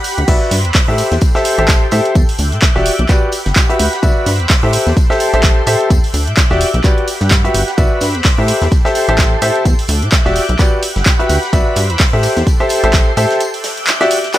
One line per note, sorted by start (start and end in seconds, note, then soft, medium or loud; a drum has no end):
0.00 0.27 G4 medium
0.00 0.27 F#5 medium
0.00 0.97 B5 medium
0.04 open hi-hat loud
0.04 tambourine medium
0.18 0.25 D2 loud
0.18 closed hi-hat medium
0.28 0.37 C2 loud
0.28 0.54 F#4 medium
0.28 0.54 B4 medium
0.28 0.98 C5 medium
0.28 0.54 D5 medium
0.28 0.54 E5 loud
0.28 0.98 D6 medium
0.28 0.98 E6 medium
0.28 0.98 F#6 medium
0.28 kick loud
0.28 closed hi-hat medium
0.28 crash medium
0.28 tambourine medium
0.51 0.66 G2 medium
0.51 snare soft
0.51 open hi-hat loud
0.51 tambourine medium
0.65 0.71 E2 medium
0.65 closed hi-hat medium
0.75 kick loud
0.75 snare loud
0.75 clap loud
0.75 closed hi-hat medium
0.75 open hi-hat medium
0.88 1.03 A2 medium
0.88 1.13 G4 medium
0.88 1.13 A4 medium
0.88 1.13 C5 medium
0.88 1.13 E5 medium
0.98 2.14 A4 medium
0.98 2.14 G5 medium
0.98 2.14 C6 medium
0.98 open hi-hat loud
0.98 tambourine medium
1.11 1.18 E2 loud
1.11 snare medium
1.11 closed hi-hat medium
1.21 kick loud
1.21 closed hi-hat medium
1.21 tambourine loud
1.35 1.54 G4 medium
1.35 1.54 A4 medium
1.35 1.54 C5 medium
1.35 1.54 E5 loud
1.35 snare medium
1.45 open hi-hat loud
1.45 tambourine medium
1.58 1.86 A1 loud
1.58 1.84 G4 medium
1.58 1.84 A4 medium
1.58 1.84 C5 medium
1.58 1.84 E5 medium
1.58 closed hi-hat medium
1.68 kick loud
1.68 snare loud
1.68 clap loud
1.68 closed hi-hat medium
1.68 tambourine medium
1.91 2.01 A2 medium
1.91 2.14 G4 medium
1.91 2.14 A4 medium
1.91 2.14 C5 medium
1.91 2.14 E5 medium
1.91 open hi-hat loud
1.91 tambourine medium
2.05 closed hi-hat medium
2.15 2.24 E2 loud
2.15 3.08 E5 medium
2.15 3.08 D6 medium
2.15 3.08 F#6 medium
2.15 3.08 G6 medium
2.15 kick loud
2.15 closed hi-hat medium
2.15 tambourine medium
2.29 open hi-hat medium
2.38 2.54 D2 medium
2.38 open hi-hat loud
2.38 tambourine medium
2.52 2.59 A2 medium
2.52 closed hi-hat medium
2.52 closed hi-hat soft
2.62 kick loud
2.62 snare loud
2.62 clap loud
2.62 closed hi-hat medium
2.62 tambourine medium
2.76 2.90 E1 loud
2.76 2.90 F#4 medium
2.76 2.90 G4 medium
2.76 2.90 D5 medium
2.76 2.90 E5 loud
2.76 snare soft
2.86 open hi-hat loud
2.86 tambourine medium
2.99 3.06 B1 loud
2.99 closed hi-hat medium
3.09 3.30 F#4 medium
3.09 3.30 G4 medium
3.09 4.02 G4 medium
3.09 3.30 B4 medium
3.09 3.30 D5 medium
3.09 4.02 F#5 medium
3.09 4.72 B5 loud
3.09 kick loud
3.09 clap medium
3.09 closed hi-hat medium
3.09 tambourine medium
3.32 open hi-hat loud
3.32 tambourine medium
3.45 3.53 G1 medium
3.45 snare medium
3.45 closed hi-hat medium
3.56 kick loud
3.56 snare loud
3.56 clap loud
3.56 closed hi-hat medium
3.56 tambourine medium
3.69 3.84 F#4 medium
3.69 3.84 G4 medium
3.69 3.84 B4 medium
3.69 3.84 E5 medium
3.69 closed hi-hat soft
3.79 3.88 D2 medium
3.79 open hi-hat loud
3.79 tambourine medium
3.93 snare soft
3.93 closed hi-hat medium
4.03 4.12 C2 loud
4.03 4.28 F#4 medium
4.03 4.29 B4 medium
4.03 4.73 C5 medium
4.03 4.28 D5 medium
4.03 4.29 E5 loud
4.03 4.73 D6 medium
4.03 4.73 E6 medium
4.03 4.73 F#6 medium
4.03 kick loud
4.03 closed hi-hat medium
4.03 tambourine loud
4.26 4.41 G2 medium
4.26 snare medium
4.26 open hi-hat loud
4.26 tambourine medium
4.40 4.46 E2 medium
4.40 closed hi-hat medium
4.50 kick loud
4.50 snare loud
4.50 clap loud
4.50 closed hi-hat medium
4.50 open hi-hat medium
4.63 4.78 A2 medium
4.63 4.88 G4 medium
4.63 4.88 A4 medium
4.63 4.88 C5 medium
4.63 4.88 E5 medium
4.73 5.89 A4 medium
4.73 5.89 G5 medium
4.73 5.89 C6 medium
4.73 open hi-hat loud
4.73 tambourine medium
4.87 4.93 E2 loud
4.87 snare medium
4.87 closed hi-hat medium
4.97 kick loud
4.97 closed hi-hat medium
4.97 tambourine medium
5.10 5.29 G4 medium
5.10 5.29 A4 medium
5.10 5.29 C5 medium
5.10 5.29 E5 loud
5.10 snare medium
5.20 open hi-hat loud
5.20 tambourine medium
5.33 5.62 A1 loud
5.33 5.59 G4 medium
5.33 5.59 A4 medium
5.33 5.59 C5 medium
5.33 5.59 E5 loud
5.33 closed hi-hat medium
5.43 kick loud
5.43 snare loud
5.43 clap loud
5.43 closed hi-hat medium
5.43 tambourine medium
5.67 5.76 A2 medium
5.67 5.89 G4 medium
5.67 5.89 A4 medium
5.67 5.89 C5 medium
5.67 5.89 E5 loud
5.67 open hi-hat loud
5.67 tambourine medium
5.81 closed hi-hat soft
5.90 5.99 E2 loud
5.90 6.83 E5 medium
5.90 6.83 D6 medium
5.90 6.83 F#6 medium
5.90 6.83 G6 medium
5.90 kick loud
5.90 closed hi-hat medium
5.90 tambourine loud
6.04 open hi-hat medium
6.14 6.29 D2 medium
6.14 open hi-hat loud
6.14 tambourine medium
6.27 6.34 A2 medium
6.27 closed hi-hat medium
6.27 closed hi-hat soft
6.37 kick loud
6.37 snare loud
6.37 clap loud
6.37 closed hi-hat medium
6.37 tambourine loud
6.50 6.65 E1 medium
6.50 6.65 F#4 medium
6.50 6.65 G4 medium
6.50 6.65 D5 medium
6.50 6.65 E5 loud
6.50 snare soft
6.61 open hi-hat loud
6.61 tambourine medium
6.74 6.81 B1 medium
6.74 closed hi-hat soft
6.84 7.05 F#4 medium
6.84 7.77 G4 medium
6.84 7.05 G4 medium
6.84 7.05 B4 medium
6.84 7.05 D5 medium
6.84 7.77 F#5 medium
6.84 7.77 B5 medium
6.84 kick loud
6.84 clap medium
6.84 closed hi-hat medium
6.84 tambourine medium
6.98 closed hi-hat soft
7.08 open hi-hat loud
7.08 tambourine medium
7.20 7.49 G2 loud
7.20 snare medium
7.20 closed hi-hat soft
7.31 kick loud
7.31 snare loud
7.31 clap loud
7.31 closed hi-hat medium
7.31 tambourine medium
7.44 7.59 F#4 medium
7.44 7.59 G4 medium
7.44 7.59 B4 medium
7.44 7.59 E5 medium
7.44 closed hi-hat soft
7.54 7.63 G1 loud
7.54 open hi-hat loud
7.54 tambourine medium
7.68 snare soft
7.68 closed hi-hat soft
7.78 7.87 C2 loud
7.78 8.04 F#4 medium
7.78 8.04 B4 medium
7.78 8.48 C5 medium
7.78 8.04 D5 medium
7.78 8.04 E5 loud
7.78 8.48 B5 medium
7.78 8.48 D6 medium
7.78 8.48 E6 medium
7.78 8.48 F#6 medium
7.78 kick loud
7.78 closed hi-hat medium
7.78 tambourine loud
8.01 8.16 G2 medium
8.01 snare medium
8.01 open hi-hat loud
8.01 tambourine medium
8.15 8.21 E2 medium
8.15 closed hi-hat medium
8.24 kick loud
8.24 snare loud
8.24 clap loud
8.24 closed hi-hat medium
8.24 open hi-hat medium
8.38 8.53 A2 medium
8.38 8.63 G4 medium
8.38 8.63 A4 medium
8.38 8.63 C5 medium
8.38 8.63 E5 medium
8.48 9.64 A4 medium
8.48 9.64 G5 medium
8.48 9.64 C6 medium
8.48 open hi-hat loud
8.48 tambourine medium
8.61 8.68 E2 medium
8.61 snare medium
8.61 closed hi-hat medium
8.72 kick loud
8.72 closed hi-hat medium
8.72 tambourine medium
8.85 9.04 G4 medium
8.85 9.04 A4 medium
8.85 9.04 C5 medium
8.85 9.04 E5 loud
8.85 snare medium
8.95 open hi-hat loud
8.95 tambourine medium
9.08 9.37 A1 loud
9.08 9.34 G4 medium
9.08 9.34 A4 medium
9.08 9.34 C5 medium
9.08 9.34 E5 loud
9.08 closed hi-hat medium
9.18 kick loud
9.18 snare loud
9.18 clap loud
9.18 closed hi-hat medium
9.18 tambourine medium
9.42 9.51 A2 medium
9.42 9.64 G4 medium
9.42 9.64 A4 medium
9.42 9.64 C5 medium
9.42 9.64 E5 loud
9.42 open hi-hat loud
9.42 tambourine medium
9.55 closed hi-hat soft
9.65 9.74 E2 medium
9.65 10.58 E5 medium
9.65 10.58 D6 medium
9.65 10.58 F#6 medium
9.65 10.58 G6 medium
9.65 kick loud
9.65 closed hi-hat medium
9.65 tambourine loud
9.79 open hi-hat medium
9.88 10.04 D2 medium
9.88 open hi-hat loud
9.88 tambourine medium
10.02 10.09 A2 medium
10.02 closed hi-hat medium
10.02 closed hi-hat soft
10.12 kick loud
10.12 snare loud
10.12 clap loud
10.12 closed hi-hat medium
10.12 tambourine medium
10.25 10.40 E1 medium
10.25 10.40 F#4 medium
10.25 10.40 G4 medium
10.25 10.40 D5 medium
10.25 10.40 E5 loud
10.25 snare medium
10.36 open hi-hat loud
10.36 tambourine medium
10.49 10.56 B1 loud
10.49 closed hi-hat medium
10.59 10.80 F#4 medium
10.59 10.80 G4 medium
10.59 11.52 G4 medium
10.59 10.80 B4 medium
10.59 10.80 D5 medium
10.59 11.52 F#5 medium
10.59 12.22 B5 medium
10.59 kick loud
10.59 clap medium
10.59 closed hi-hat medium
10.59 tambourine medium
10.82 open hi-hat loud
10.82 tambourine medium
10.96 11.03 G1 medium
10.96 snare medium
10.96 closed hi-hat medium
11.05 kick loud
11.05 snare loud
11.05 clap loud
11.05 closed hi-hat medium
11.05 tambourine medium
11.19 11.34 F#4 medium
11.19 11.34 G4 medium
11.19 11.34 B4 medium
11.19 11.34 E5 medium
11.19 closed hi-hat soft
11.29 11.38 D2 medium
11.29 open hi-hat loud
11.29 tambourine medium
11.43 snare soft
11.43 closed hi-hat medium
11.53 11.62 C2 loud
11.53 11.79 F#4 medium
11.53 11.79 B4 medium
11.53 12.23 C5 medium
11.53 11.79 D5 medium
11.53 11.79 E5 loud
11.53 12.22 D6 medium
11.53 12.23 E6 medium
11.53 12.22 F#6 medium
11.53 kick loud
11.53 closed hi-hat medium
11.53 tambourine medium
11.76 11.91 G2 medium
11.76 snare soft
11.76 open hi-hat loud
11.76 tambourine medium
11.90 11.96 E2 medium
11.90 closed hi-hat medium
11.99 kick loud
11.99 snare loud
11.99 clap loud
11.99 closed hi-hat medium
11.99 open hi-hat medium
12.13 12.28 A2 medium
12.13 12.38 G4 medium
12.13 12.38 A4 medium
12.13 12.38 C5 medium
12.13 12.38 E5 medium
12.23 13.39 A4 medium
12.23 13.39 G5 medium
12.23 13.39 C6 medium
12.23 open hi-hat loud
12.23 tambourine medium
12.36 12.43 E2 medium
12.36 snare medium
12.36 closed hi-hat medium
12.47 kick loud
12.47 closed hi-hat medium
12.47 tambourine loud
12.60 12.80 G4 medium
12.60 12.80 A4 medium
12.60 12.80 C5 medium
12.60 12.80 E5 loud
12.69 open hi-hat loud
12.69 tambourine medium
12.84 13.12 A1 loud
12.84 13.09 G4 medium
12.84 13.09 A4 medium
12.84 13.09 C5 medium
12.84 13.09 E5 loud
12.84 closed hi-hat medium
12.93 kick loud
12.93 snare loud
12.93 clap loud
12.93 closed hi-hat medium
12.93 tambourine medium
13.17 13.26 A2 medium
13.17 13.39 G4 medium
13.17 13.39 A4 medium
13.17 13.39 C5 medium
13.17 13.39 E5 loud
13.17 open hi-hat loud
13.17 tambourine medium
13.30 snare medium
13.30 closed hi-hat medium
13.40 14.33 E5 medium
13.40 14.33 D6 medium
13.40 14.33 F#6 medium
13.40 14.33 G6 medium
13.40 closed hi-hat medium
13.40 tambourine medium
13.54 open hi-hat medium
13.64 snare loud
13.64 open hi-hat loud
13.64 open hi-hat medium
13.77 closed hi-hat medium
13.87 clap loud
13.87 closed hi-hat medium
13.87 tambourine medium
14.01 14.15 F#4 loud
14.01 14.15 G4 medium
14.01 14.15 D5 medium
14.01 14.15 E5 loud
14.01 snare medium
14.01 closed hi-hat soft
14.11 open hi-hat loud
14.11 tambourine medium
14.24 snare medium
14.24 closed hi-hat medium
14.33 14.38 F#4 medium
14.33 14.38 G4 medium
14.33 14.38 B4 medium
14.33 14.38 D5 medium
14.33 14.38 F#5 medium
14.33 14.38 B5 medium
14.33 clap medium
14.33 closed hi-hat medium
14.33 tambourine medium